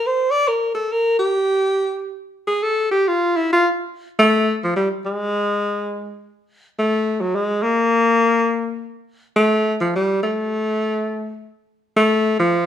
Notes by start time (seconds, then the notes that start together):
0.06 C5
0.31 D5
0.48 A#4
0.74 A4
0.92 A#4
1.19 G4
2.47 G#4
2.63 A4
2.91 G4
3.08 F4
3.36 E4
3.52 F4
4.19 A3
4.64 F3
4.76 G3
5.06 G#3
6.79 A3
7.21 F#3
7.35 G#3
7.62 A#3
9.36 A3
9.80 F3
9.95 G3
10.23 A3
11.96 A3
12.39 F3